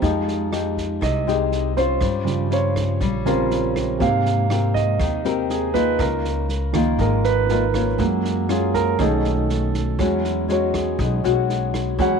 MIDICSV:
0, 0, Header, 1, 5, 480
1, 0, Start_track
1, 0, Key_signature, -4, "major"
1, 0, Tempo, 498339
1, 18, Time_signature, 4, 2, 24, 8
1, 11748, End_track
2, 0, Start_track
2, 0, Title_t, "Grand piano"
2, 0, Program_c, 0, 0
2, 0, Control_c, 0, 64, 127
2, 19, Note_on_c, 0, 56, 38
2, 24, Note_on_c, 0, 63, 46
2, 32, Control_c, 0, 64, 0
2, 178, Control_c, 0, 64, 127
2, 703, Note_off_c, 0, 56, 0
2, 706, Note_off_c, 0, 63, 0
2, 994, Note_on_c, 0, 75, 61
2, 1668, Note_off_c, 0, 75, 0
2, 1704, Note_on_c, 0, 72, 70
2, 1934, Note_off_c, 0, 72, 0
2, 1953, Control_c, 0, 64, 0
2, 2092, Control_c, 0, 64, 127
2, 2163, Note_on_c, 0, 49, 45
2, 2163, Note_on_c, 0, 53, 37
2, 2170, Note_on_c, 0, 55, 39
2, 2439, Note_on_c, 0, 73, 63
2, 3110, Note_off_c, 0, 73, 0
2, 3121, Note_off_c, 0, 49, 0
2, 3123, Note_off_c, 0, 53, 0
2, 3126, Note_off_c, 0, 55, 0
2, 3135, Note_on_c, 0, 49, 39
2, 3138, Note_on_c, 0, 53, 37
2, 3141, Note_on_c, 0, 55, 39
2, 3145, Note_on_c, 0, 60, 46
2, 3145, Note_on_c, 0, 70, 57
2, 3353, Note_off_c, 0, 49, 0
2, 3354, Note_off_c, 0, 53, 0
2, 3355, Note_off_c, 0, 55, 0
2, 3358, Note_off_c, 0, 60, 0
2, 3374, Note_off_c, 0, 70, 0
2, 3837, Note_on_c, 0, 48, 47
2, 3855, Note_on_c, 0, 58, 44
2, 3869, Note_on_c, 0, 77, 73
2, 3870, Control_c, 0, 64, 0
2, 4029, Control_c, 0, 64, 127
2, 4530, Note_off_c, 0, 48, 0
2, 4540, Note_off_c, 0, 58, 0
2, 4544, Note_off_c, 0, 77, 0
2, 4569, Note_on_c, 0, 75, 69
2, 4715, Note_off_c, 0, 75, 0
2, 5305, Note_on_c, 0, 68, 55
2, 5527, Note_on_c, 0, 71, 85
2, 5534, Note_off_c, 0, 68, 0
2, 5764, Note_off_c, 0, 71, 0
2, 5778, Note_on_c, 0, 70, 58
2, 5790, Control_c, 0, 64, 0
2, 5939, Control_c, 0, 64, 127
2, 6224, Note_off_c, 0, 70, 0
2, 6480, Note_on_c, 0, 53, 40
2, 6482, Note_on_c, 0, 51, 44
2, 6489, Note_on_c, 0, 58, 44
2, 6749, Note_on_c, 0, 70, 57
2, 6807, Note_off_c, 0, 53, 0
2, 6808, Note_off_c, 0, 51, 0
2, 6812, Note_off_c, 0, 58, 0
2, 6976, Note_off_c, 0, 70, 0
2, 6980, Note_on_c, 0, 71, 86
2, 7211, Note_off_c, 0, 71, 0
2, 7232, Note_on_c, 0, 70, 53
2, 7672, Note_off_c, 0, 70, 0
2, 7687, Note_on_c, 0, 56, 43
2, 7698, Note_on_c, 0, 58, 48
2, 7707, Control_c, 0, 64, 0
2, 7888, Control_c, 0, 64, 127
2, 8011, Note_off_c, 0, 56, 0
2, 8017, Note_off_c, 0, 58, 0
2, 8206, Note_on_c, 0, 68, 55
2, 8423, Note_on_c, 0, 70, 76
2, 8425, Note_off_c, 0, 68, 0
2, 8653, Note_off_c, 0, 70, 0
2, 8656, Note_on_c, 0, 51, 41
2, 8661, Note_on_c, 0, 57, 41
2, 8662, Note_on_c, 0, 61, 45
2, 8668, Control_c, 0, 64, 0
2, 8685, Note_on_c, 0, 69, 52
2, 8839, Control_c, 0, 64, 127
2, 9119, Note_off_c, 0, 69, 0
2, 9342, Note_off_c, 0, 51, 0
2, 9344, Note_off_c, 0, 57, 0
2, 9344, Note_off_c, 0, 61, 0
2, 9621, Note_on_c, 0, 54, 44
2, 9623, Note_on_c, 0, 56, 39
2, 9627, Note_on_c, 0, 61, 47
2, 9630, Control_c, 0, 64, 0
2, 9786, Control_c, 0, 64, 127
2, 10132, Note_on_c, 0, 73, 55
2, 10349, Note_off_c, 0, 73, 0
2, 10358, Note_on_c, 0, 68, 40
2, 10583, Note_off_c, 0, 68, 0
2, 11506, Note_off_c, 0, 54, 0
2, 11506, Note_off_c, 0, 56, 0
2, 11508, Note_off_c, 0, 61, 0
2, 11543, Note_on_c, 0, 54, 46
2, 11551, Note_on_c, 0, 56, 41
2, 11556, Note_on_c, 0, 61, 50
2, 11575, Note_on_c, 0, 78, 73
2, 11748, Note_off_c, 0, 54, 0
2, 11748, Note_off_c, 0, 56, 0
2, 11748, Note_off_c, 0, 61, 0
2, 11748, Note_off_c, 0, 78, 0
2, 11748, End_track
3, 0, Start_track
3, 0, Title_t, "Nylon-string guitar"
3, 0, Program_c, 1, 24
3, 17, Note_on_c, 1, 53, 57
3, 22, Note_on_c, 1, 56, 62
3, 25, Note_on_c, 1, 63, 60
3, 33, Note_on_c, 1, 67, 63
3, 463, Note_off_c, 1, 56, 0
3, 463, Note_off_c, 1, 63, 0
3, 464, Note_off_c, 1, 67, 0
3, 496, Note_on_c, 1, 56, 51
3, 501, Note_on_c, 1, 63, 54
3, 506, Note_on_c, 1, 67, 59
3, 954, Note_off_c, 1, 53, 0
3, 972, Note_on_c, 1, 48, 52
3, 1180, Note_off_c, 1, 56, 0
3, 1181, Note_off_c, 1, 63, 0
3, 1182, Note_off_c, 1, 67, 0
3, 1223, Note_on_c, 1, 56, 67
3, 1231, Note_on_c, 1, 67, 73
3, 1235, Note_on_c, 1, 63, 67
3, 1662, Note_off_c, 1, 56, 0
3, 1666, Note_off_c, 1, 67, 0
3, 1668, Note_off_c, 1, 63, 0
3, 1705, Note_on_c, 1, 61, 57
3, 1714, Note_on_c, 1, 65, 63
3, 1717, Note_on_c, 1, 72, 67
3, 1911, Note_off_c, 1, 48, 0
3, 1938, Note_on_c, 1, 55, 58
3, 2383, Note_off_c, 1, 61, 0
3, 2388, Note_off_c, 1, 72, 0
3, 2389, Note_off_c, 1, 65, 0
3, 2419, Note_on_c, 1, 61, 51
3, 2424, Note_on_c, 1, 65, 64
3, 2428, Note_on_c, 1, 72, 59
3, 2874, Note_off_c, 1, 55, 0
3, 2896, Note_off_c, 1, 61, 0
3, 2897, Note_on_c, 1, 55, 59
3, 2898, Note_off_c, 1, 65, 0
3, 2900, Note_off_c, 1, 72, 0
3, 3137, Note_on_c, 1, 61, 70
3, 3142, Note_on_c, 1, 65, 75
3, 3150, Note_on_c, 1, 72, 70
3, 3819, Note_off_c, 1, 61, 0
3, 3821, Note_off_c, 1, 65, 0
3, 3825, Note_off_c, 1, 72, 0
3, 3833, Note_off_c, 1, 55, 0
3, 3851, Note_on_c, 1, 60, 55
3, 3856, Note_on_c, 1, 56, 56
3, 3862, Note_on_c, 1, 67, 53
3, 3867, Note_on_c, 1, 70, 63
3, 4296, Note_off_c, 1, 60, 0
3, 4301, Note_off_c, 1, 67, 0
3, 4303, Note_off_c, 1, 70, 0
3, 4337, Note_on_c, 1, 60, 58
3, 4343, Note_on_c, 1, 67, 50
3, 4348, Note_on_c, 1, 70, 62
3, 4792, Note_off_c, 1, 56, 0
3, 4818, Note_on_c, 1, 51, 55
3, 5018, Note_off_c, 1, 60, 0
3, 5022, Note_off_c, 1, 67, 0
3, 5024, Note_off_c, 1, 70, 0
3, 5053, Note_on_c, 1, 60, 66
3, 5059, Note_on_c, 1, 67, 72
3, 5062, Note_on_c, 1, 70, 67
3, 5497, Note_off_c, 1, 60, 0
3, 5498, Note_off_c, 1, 67, 0
3, 5498, Note_off_c, 1, 70, 0
3, 5531, Note_on_c, 1, 58, 63
3, 5531, Note_on_c, 1, 63, 66
3, 5535, Note_on_c, 1, 65, 65
3, 5753, Note_off_c, 1, 51, 0
3, 5782, Note_on_c, 1, 49, 57
3, 6215, Note_off_c, 1, 58, 0
3, 6215, Note_off_c, 1, 63, 0
3, 6217, Note_off_c, 1, 65, 0
3, 6493, Note_on_c, 1, 58, 67
3, 6500, Note_on_c, 1, 63, 57
3, 6501, Note_on_c, 1, 65, 69
3, 6715, Note_off_c, 1, 49, 0
3, 6738, Note_on_c, 1, 56, 62
3, 7177, Note_off_c, 1, 58, 0
3, 7179, Note_off_c, 1, 65, 0
3, 7180, Note_off_c, 1, 63, 0
3, 7219, Note_on_c, 1, 58, 56
3, 7229, Note_on_c, 1, 63, 53
3, 7229, Note_on_c, 1, 65, 62
3, 7359, Note_off_c, 1, 58, 0
3, 7363, Note_off_c, 1, 65, 0
3, 7364, Note_off_c, 1, 63, 0
3, 7460, Note_on_c, 1, 58, 58
3, 7464, Note_on_c, 1, 65, 73
3, 7467, Note_on_c, 1, 61, 66
3, 7673, Note_off_c, 1, 56, 0
3, 7689, Note_on_c, 1, 54, 60
3, 8140, Note_off_c, 1, 58, 0
3, 8141, Note_off_c, 1, 65, 0
3, 8144, Note_off_c, 1, 61, 0
3, 8179, Note_on_c, 1, 58, 57
3, 8185, Note_on_c, 1, 61, 57
3, 8186, Note_on_c, 1, 65, 66
3, 8621, Note_off_c, 1, 58, 0
3, 8621, Note_off_c, 1, 61, 0
3, 8623, Note_off_c, 1, 65, 0
3, 8629, Note_off_c, 1, 54, 0
3, 8658, Note_on_c, 1, 47, 61
3, 8661, Note_on_c, 1, 57, 64
3, 8667, Note_on_c, 1, 63, 62
3, 8670, Note_on_c, 1, 68, 69
3, 9304, Note_off_c, 1, 57, 0
3, 9308, Note_off_c, 1, 63, 0
3, 9308, Note_off_c, 1, 68, 0
3, 9595, Note_off_c, 1, 47, 0
3, 9629, Note_on_c, 1, 56, 53
3, 9630, Note_on_c, 1, 52, 57
3, 9634, Note_on_c, 1, 61, 51
3, 9638, Note_on_c, 1, 66, 58
3, 10066, Note_off_c, 1, 56, 0
3, 10067, Note_off_c, 1, 61, 0
3, 10071, Note_off_c, 1, 66, 0
3, 10099, Note_on_c, 1, 56, 61
3, 10103, Note_on_c, 1, 61, 51
3, 10116, Note_on_c, 1, 66, 59
3, 10562, Note_off_c, 1, 52, 0
3, 10584, Note_on_c, 1, 47, 54
3, 10782, Note_off_c, 1, 56, 0
3, 10784, Note_off_c, 1, 61, 0
3, 10791, Note_off_c, 1, 66, 0
3, 10824, Note_on_c, 1, 56, 70
3, 10828, Note_on_c, 1, 61, 75
3, 10836, Note_on_c, 1, 66, 75
3, 11506, Note_off_c, 1, 56, 0
3, 11508, Note_off_c, 1, 61, 0
3, 11510, Note_off_c, 1, 66, 0
3, 11520, Note_off_c, 1, 47, 0
3, 11547, Note_on_c, 1, 56, 56
3, 11551, Note_on_c, 1, 52, 60
3, 11556, Note_on_c, 1, 61, 58
3, 11558, Note_on_c, 1, 66, 61
3, 11748, Note_off_c, 1, 52, 0
3, 11748, Note_off_c, 1, 56, 0
3, 11748, Note_off_c, 1, 61, 0
3, 11748, Note_off_c, 1, 66, 0
3, 11748, End_track
4, 0, Start_track
4, 0, Title_t, "Upright bass"
4, 0, Program_c, 2, 32
4, 21, Note_on_c, 2, 41, 94
4, 942, Note_off_c, 2, 41, 0
4, 982, Note_on_c, 2, 36, 91
4, 1902, Note_off_c, 2, 36, 0
4, 1939, Note_on_c, 2, 43, 97
4, 2860, Note_off_c, 2, 43, 0
4, 2900, Note_on_c, 2, 34, 87
4, 3820, Note_off_c, 2, 34, 0
4, 3855, Note_on_c, 2, 44, 97
4, 4777, Note_off_c, 2, 44, 0
4, 4813, Note_on_c, 2, 39, 96
4, 5736, Note_off_c, 2, 39, 0
4, 5773, Note_on_c, 2, 37, 102
4, 6696, Note_off_c, 2, 37, 0
4, 6732, Note_on_c, 2, 32, 94
4, 7656, Note_off_c, 2, 32, 0
4, 7700, Note_on_c, 2, 42, 105
4, 8620, Note_off_c, 2, 42, 0
4, 8657, Note_on_c, 2, 35, 87
4, 9580, Note_off_c, 2, 35, 0
4, 9619, Note_on_c, 2, 40, 92
4, 10542, Note_off_c, 2, 40, 0
4, 10584, Note_on_c, 2, 35, 104
4, 10806, Note_off_c, 2, 35, 0
4, 10829, Note_on_c, 2, 35, 87
4, 11508, Note_off_c, 2, 35, 0
4, 11544, Note_on_c, 2, 40, 99
4, 11748, Note_off_c, 2, 40, 0
4, 11748, End_track
5, 0, Start_track
5, 0, Title_t, "Drums"
5, 22, Note_on_c, 9, 36, 58
5, 24, Note_on_c, 9, 38, 26
5, 118, Note_off_c, 9, 36, 0
5, 120, Note_off_c, 9, 38, 0
5, 268, Note_on_c, 9, 38, 23
5, 365, Note_off_c, 9, 38, 0
5, 507, Note_on_c, 9, 37, 60
5, 507, Note_on_c, 9, 38, 25
5, 603, Note_off_c, 9, 37, 0
5, 603, Note_off_c, 9, 38, 0
5, 742, Note_on_c, 9, 36, 25
5, 748, Note_on_c, 9, 38, 24
5, 839, Note_off_c, 9, 36, 0
5, 844, Note_off_c, 9, 38, 0
5, 983, Note_on_c, 9, 36, 60
5, 986, Note_on_c, 9, 37, 63
5, 986, Note_on_c, 9, 38, 24
5, 1080, Note_off_c, 9, 36, 0
5, 1082, Note_off_c, 9, 37, 0
5, 1082, Note_off_c, 9, 38, 0
5, 1231, Note_on_c, 9, 38, 23
5, 1327, Note_off_c, 9, 38, 0
5, 1462, Note_on_c, 9, 38, 25
5, 1558, Note_off_c, 9, 38, 0
5, 1700, Note_on_c, 9, 36, 23
5, 1701, Note_on_c, 9, 38, 23
5, 1796, Note_off_c, 9, 36, 0
5, 1797, Note_off_c, 9, 38, 0
5, 1933, Note_on_c, 9, 37, 57
5, 1933, Note_on_c, 9, 38, 26
5, 1938, Note_on_c, 9, 36, 61
5, 2029, Note_off_c, 9, 37, 0
5, 2029, Note_off_c, 9, 38, 0
5, 2035, Note_off_c, 9, 36, 0
5, 2179, Note_on_c, 9, 38, 24
5, 2275, Note_off_c, 9, 38, 0
5, 2417, Note_on_c, 9, 38, 24
5, 2513, Note_off_c, 9, 38, 0
5, 2657, Note_on_c, 9, 36, 24
5, 2660, Note_on_c, 9, 37, 61
5, 2660, Note_on_c, 9, 38, 25
5, 2754, Note_off_c, 9, 36, 0
5, 2756, Note_off_c, 9, 37, 0
5, 2756, Note_off_c, 9, 38, 0
5, 2891, Note_on_c, 9, 38, 24
5, 2896, Note_on_c, 9, 36, 55
5, 2987, Note_off_c, 9, 38, 0
5, 2992, Note_off_c, 9, 36, 0
5, 3136, Note_on_c, 9, 38, 23
5, 3232, Note_off_c, 9, 38, 0
5, 3376, Note_on_c, 9, 38, 26
5, 3472, Note_off_c, 9, 38, 0
5, 3616, Note_on_c, 9, 36, 23
5, 3622, Note_on_c, 9, 37, 58
5, 3622, Note_on_c, 9, 38, 22
5, 3712, Note_off_c, 9, 36, 0
5, 3718, Note_off_c, 9, 37, 0
5, 3718, Note_off_c, 9, 38, 0
5, 3856, Note_on_c, 9, 36, 62
5, 3856, Note_on_c, 9, 38, 25
5, 3952, Note_off_c, 9, 36, 0
5, 3953, Note_off_c, 9, 38, 0
5, 4098, Note_on_c, 9, 38, 23
5, 4194, Note_off_c, 9, 38, 0
5, 4336, Note_on_c, 9, 37, 61
5, 4336, Note_on_c, 9, 38, 27
5, 4433, Note_off_c, 9, 37, 0
5, 4433, Note_off_c, 9, 38, 0
5, 4574, Note_on_c, 9, 36, 26
5, 4579, Note_on_c, 9, 38, 23
5, 4670, Note_off_c, 9, 36, 0
5, 4675, Note_off_c, 9, 38, 0
5, 4811, Note_on_c, 9, 37, 60
5, 4811, Note_on_c, 9, 38, 26
5, 4813, Note_on_c, 9, 36, 61
5, 4908, Note_off_c, 9, 37, 0
5, 4908, Note_off_c, 9, 38, 0
5, 4909, Note_off_c, 9, 36, 0
5, 5053, Note_on_c, 9, 38, 24
5, 5149, Note_off_c, 9, 38, 0
5, 5292, Note_on_c, 9, 38, 26
5, 5388, Note_off_c, 9, 38, 0
5, 5531, Note_on_c, 9, 36, 24
5, 5532, Note_on_c, 9, 38, 24
5, 5628, Note_off_c, 9, 36, 0
5, 5628, Note_off_c, 9, 38, 0
5, 5770, Note_on_c, 9, 37, 65
5, 5770, Note_on_c, 9, 38, 23
5, 5771, Note_on_c, 9, 36, 64
5, 5866, Note_off_c, 9, 37, 0
5, 5866, Note_off_c, 9, 38, 0
5, 5867, Note_off_c, 9, 36, 0
5, 6015, Note_on_c, 9, 38, 23
5, 6111, Note_off_c, 9, 38, 0
5, 6249, Note_on_c, 9, 38, 25
5, 6346, Note_off_c, 9, 38, 0
5, 6490, Note_on_c, 9, 37, 68
5, 6490, Note_on_c, 9, 38, 26
5, 6491, Note_on_c, 9, 36, 25
5, 6586, Note_off_c, 9, 37, 0
5, 6586, Note_off_c, 9, 38, 0
5, 6587, Note_off_c, 9, 36, 0
5, 6724, Note_on_c, 9, 38, 24
5, 6730, Note_on_c, 9, 36, 60
5, 6820, Note_off_c, 9, 38, 0
5, 6826, Note_off_c, 9, 36, 0
5, 6972, Note_on_c, 9, 38, 23
5, 7068, Note_off_c, 9, 38, 0
5, 7211, Note_on_c, 9, 38, 28
5, 7307, Note_off_c, 9, 38, 0
5, 7455, Note_on_c, 9, 36, 22
5, 7455, Note_on_c, 9, 37, 56
5, 7455, Note_on_c, 9, 38, 23
5, 7551, Note_off_c, 9, 36, 0
5, 7551, Note_off_c, 9, 37, 0
5, 7551, Note_off_c, 9, 38, 0
5, 7693, Note_on_c, 9, 38, 25
5, 7696, Note_on_c, 9, 36, 60
5, 7790, Note_off_c, 9, 38, 0
5, 7792, Note_off_c, 9, 36, 0
5, 7942, Note_on_c, 9, 38, 26
5, 8039, Note_off_c, 9, 38, 0
5, 8180, Note_on_c, 9, 37, 62
5, 8180, Note_on_c, 9, 38, 25
5, 8276, Note_off_c, 9, 37, 0
5, 8276, Note_off_c, 9, 38, 0
5, 8418, Note_on_c, 9, 36, 25
5, 8419, Note_on_c, 9, 38, 27
5, 8514, Note_off_c, 9, 36, 0
5, 8515, Note_off_c, 9, 38, 0
5, 8659, Note_on_c, 9, 36, 65
5, 8659, Note_on_c, 9, 37, 60
5, 8659, Note_on_c, 9, 38, 26
5, 8755, Note_off_c, 9, 36, 0
5, 8755, Note_off_c, 9, 37, 0
5, 8755, Note_off_c, 9, 38, 0
5, 8902, Note_on_c, 9, 38, 21
5, 8998, Note_off_c, 9, 38, 0
5, 9144, Note_on_c, 9, 38, 27
5, 9241, Note_off_c, 9, 38, 0
5, 9381, Note_on_c, 9, 36, 22
5, 9382, Note_on_c, 9, 38, 23
5, 9477, Note_off_c, 9, 36, 0
5, 9478, Note_off_c, 9, 38, 0
5, 9623, Note_on_c, 9, 36, 61
5, 9625, Note_on_c, 9, 37, 60
5, 9625, Note_on_c, 9, 38, 24
5, 9719, Note_off_c, 9, 36, 0
5, 9722, Note_off_c, 9, 37, 0
5, 9722, Note_off_c, 9, 38, 0
5, 9865, Note_on_c, 9, 38, 21
5, 9961, Note_off_c, 9, 38, 0
5, 10103, Note_on_c, 9, 38, 24
5, 10200, Note_off_c, 9, 38, 0
5, 10343, Note_on_c, 9, 36, 27
5, 10345, Note_on_c, 9, 37, 62
5, 10345, Note_on_c, 9, 38, 24
5, 10440, Note_off_c, 9, 36, 0
5, 10442, Note_off_c, 9, 37, 0
5, 10442, Note_off_c, 9, 38, 0
5, 10584, Note_on_c, 9, 36, 63
5, 10585, Note_on_c, 9, 38, 25
5, 10681, Note_off_c, 9, 36, 0
5, 10681, Note_off_c, 9, 38, 0
5, 10827, Note_on_c, 9, 38, 22
5, 10924, Note_off_c, 9, 38, 0
5, 11071, Note_on_c, 9, 38, 25
5, 11167, Note_off_c, 9, 38, 0
5, 11306, Note_on_c, 9, 36, 23
5, 11308, Note_on_c, 9, 37, 57
5, 11308, Note_on_c, 9, 38, 24
5, 11403, Note_off_c, 9, 36, 0
5, 11404, Note_off_c, 9, 37, 0
5, 11404, Note_off_c, 9, 38, 0
5, 11545, Note_on_c, 9, 36, 57
5, 11550, Note_on_c, 9, 38, 24
5, 11642, Note_off_c, 9, 36, 0
5, 11646, Note_off_c, 9, 38, 0
5, 11748, End_track
0, 0, End_of_file